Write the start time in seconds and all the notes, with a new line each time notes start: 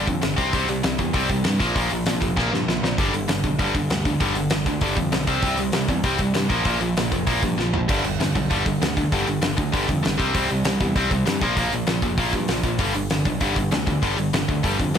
0.07 F2 G2 D3, kick, open hi-hat
0.22 G1 G2 D3, snare, open hi-hat
0.37 C2 C3 G3 C4, kick, open hi-hat
0.53 C2 C3 G3 C4, kick, open hi-hat
0.69 C2 C3 G3, open hi-hat
0.83 C2 C3 G3, snare, open hi-hat
0.99 E2 C3 G3, kick, open hi-hat
1.14 C2 C3 G3 C4, kick, open hi-hat
1.29 C2 C3 G3, kick, open hi-hat
1.44 G2 C3 G3, snare, open hi-hat
1.60 A#1 A#2 F3 A#3, kick, open hi-hat
1.75 A#1 A#2 F3 A#3, kick, open hi-hat
1.90 A#1 A#2 F3, open hi-hat
2.06 A#1 A#2 F3, snare, open hi-hat
2.21 F1 A#2 F3, kick, open hi-hat
2.37 A#1 A#2 F3 A#3, kick, snare
2.52 G2 A#2 F3, snare
2.67 A#1 A#2 F3, snare
2.82 A#1 A#2 F3, snare
2.98 G1 G2 D3 G3, kick, open hi-hat
3.13 G1 G2 D3, open hi-hat
3.28 G1 G2 D3, snare, open hi-hat
3.44 B1 G2 D3, kick, open hi-hat
3.59 G1 G2 D3 G3, kick, open hi-hat
3.75 G1 G2 D3, kick, open hi-hat
3.90 D2 G2 D3, snare, open hi-hat
4.05 G2 D3, kick, open hi-hat
4.20 G1 G2 D3 G3, kick, open hi-hat
4.35 G1 G2 D3, open hi-hat
4.50 G1 G2 D3, snare, open hi-hat
4.66 D2 G2 D3, kick, open hi-hat
4.81 G1 G2 D3 G3, kick, open hi-hat
4.96 F2 G2 D3, kick, open hi-hat
5.12 B1 G2 D3, snare, open hi-hat
5.27 C2 C3 G3 C4, kick, open hi-hat
5.42 C2 C3 G3 C4, kick, open hi-hat
5.58 C2 C3 G3, open hi-hat
5.72 C2 C3 G3, snare, open hi-hat
5.88 E2 C3 G3, kick, open hi-hat
6.04 C2 C3 G3 C4, kick, open hi-hat
6.19 C2 C3 G3, kick, open hi-hat
6.34 G2 C3 G3, snare, open hi-hat
6.50 A#1 A#2 F3 A#3, kick, open hi-hat
6.65 A#1 A#2 F3 A#3, kick, open hi-hat
6.80 A#1 A#2 F3, open hi-hat
6.97 A#1 A#2 F3, snare, open hi-hat
7.12 F1 A#2 F3, kick, open hi-hat
7.27 A#1 A#2 F3 A#3, kick, open hi-hat
7.43 G2 A#2 F3, kick, open hi-hat
7.57 A#1 A#2 F3, snare
7.73 A#1 A#2 F3, floor tom
7.88 G1 G2 D3 G3, kick, open hi-hat, crash
8.04 G1 G2 D3, open hi-hat
8.19 G1 G2 D3, snare, open hi-hat
8.35 B1 G2 D3, kick, open hi-hat
8.50 G1 G2 D3 G3, kick, open hi-hat
8.66 G1 G2 D3, kick, open hi-hat
8.80 D2 G2 D3, snare, open hi-hat
8.97 G2 D3, kick, open hi-hat
9.12 G1 G2 D3 G3, kick, open hi-hat
9.27 G1 G2 D3, open hi-hat
9.41 G1 G2 D3, snare, open hi-hat
9.57 D2 G2 D3, kick, open hi-hat
9.72 G1 G2 D3 G3, kick, open hi-hat
9.88 F2 G2 D3, kick, open hi-hat
10.03 G1 G2 D3, snare, open hi-hat
10.18 C2 C3 G3 C4, kick, open hi-hat
10.34 C2 C3 G3 C4, kick, open hi-hat
10.49 C2 C3 G3, open hi-hat
10.65 C2 C3 G3, snare, open hi-hat
10.80 E2 C3 G3, kick, open hi-hat
10.95 C2 C3 G3 C4, kick, open hi-hat
11.11 C2 C3 G3, kick, open hi-hat
11.26 G2 C3 G3, snare, open hi-hat
11.41 A#1 A#2 F3 A#3, kick, open hi-hat
11.57 A#1 A#2 F3 A#3, kick, open hi-hat
11.73 A#1 A#2 F3, open hi-hat
11.87 A#1 A#2 F3, snare, open hi-hat
12.02 F1 A#2 F3, kick, open hi-hat
12.18 A#1 A#2 F3 A#3, kick, open hi-hat
12.33 G2 A#2 F3, kick, open hi-hat
12.48 A#1 A#2 F3, snare, open hi-hat
12.63 A#1 A#2 F3, kick, open hi-hat
12.79 G1 G2 D3 G3, kick, open hi-hat
12.94 G1 G2 D3, open hi-hat
13.10 G1 G2 D3, snare, open hi-hat
13.25 B1 G2 D3, kick, open hi-hat
13.41 G1 G2 D3 G3, kick, open hi-hat
13.56 G1 G2 D3, kick, open hi-hat
13.71 D2 G2 D3, snare, open hi-hat
13.87 G2 D3, kick, open hi-hat
14.02 G1 G2 D3 G3, kick, open hi-hat
14.17 G1 G2 D3, open hi-hat
14.33 G1 G2 D3, snare, open hi-hat
14.48 D2 G2 D3, kick, open hi-hat
14.63 G1 G2 D3 G3, kick, open hi-hat
14.79 F2 G2 D3, kick, open hi-hat
14.94 G2 D3, open hi-hat